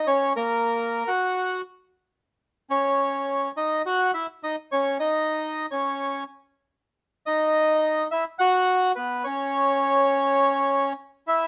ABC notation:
X:1
M:4/4
L:1/16
Q:1/4=104
K:C#dor
V:1 name="Bandoneon"
[Cc]2 [A,A]4- [A,A] [Ff]4 z4 z | z2 [Cc]6 [Dd]2 [Ff]2 [Ee]2 [Dd]2 | [Cc]2 [Dd]4- [Dd] [Cc]4 z4 z | z2 [Dd]6 [Ee]2 [Ff]4 [B,B]2 |
[Cc]12 z2 [Ee]2 |]